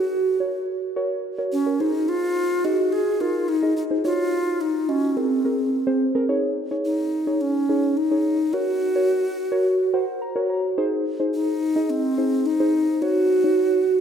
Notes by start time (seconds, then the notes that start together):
Already playing: F#4
0.40 F#4 A#4 C#5
0.96 F#4 A#4 C#5
1.38 F#4 A#4 C#5
1.52 C#4
1.66 F#4 A#4 C#5
1.80 D#4 G#4 C5
2.08 F4
2.64 D#4 F#4 G#4 D#5
2.92 G#4
3.21 D#4 F4 G#4 A#4
3.48 D#4
3.63 D#4 G#4 D#5
3.77 D#4
3.91 D#4 G#4 C5
4.05 D#4 F4 F#4 C#5
4.61 D#4
4.89 C#4 D#4 F#4 D#5
5.17 C4 G#4 A#4
5.45 C4 G#4 A#4
5.87 C4 G#4 C5
6.15 C4 G#4 A#4
6.29 D#4 G#4 C#5
6.71 D#4 G#4 C#5
6.85 D#4
7.27 D#4 G#4 C#5
7.41 C#4
7.69 D#4 G#4 C#5
7.97 D#4
8.11 D#4 G#4 C#5
8.53 F#4 A#4 C#5
8.95 F#4 A#4 C#5
9.52 F#4 A#4 C#5
9.94 F#4 A#4 C5 F#5
10.22 A#5
10.36 F#4 A#4 C#5
10.50 A#5
10.78 D#4 G#4 C5
11.20 D#4 G#4 C5
11.34 D#4
11.76 D#4 G#4 D#5
11.90 C4
12.18 D#4 G#4 C5
12.46 D#4
12.60 D#4 G#4 C5
13.02 D#4 F#4 C#5
13.44 D#4 F#4 C#5